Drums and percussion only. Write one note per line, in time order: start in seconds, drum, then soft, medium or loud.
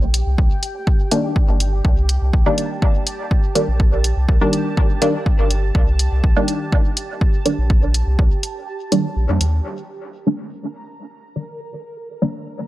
0.14 closed hi-hat medium
0.38 kick loud
0.63 closed hi-hat medium
0.87 kick loud
1.11 closed hi-hat medium
1.36 kick loud
1.60 closed hi-hat medium
1.85 kick loud
2.09 closed hi-hat medium
2.33 kick loud
2.58 closed hi-hat medium
2.82 kick loud
3.07 closed hi-hat medium
3.31 kick loud
3.55 closed hi-hat medium
3.80 kick loud
4.04 closed hi-hat medium
4.29 kick loud
4.53 closed hi-hat medium
4.77 kick loud
5.02 closed hi-hat medium
5.26 kick loud
5.51 closed hi-hat medium
5.75 kick loud
5.99 closed hi-hat medium
6.24 kick loud
6.48 closed hi-hat medium
6.72 kick loud
6.97 closed hi-hat medium
7.21 kick loud
7.46 closed hi-hat medium
7.70 kick loud
7.94 closed hi-hat medium
8.19 kick loud
8.43 closed hi-hat medium
8.92 closed hi-hat medium
9.41 closed hi-hat medium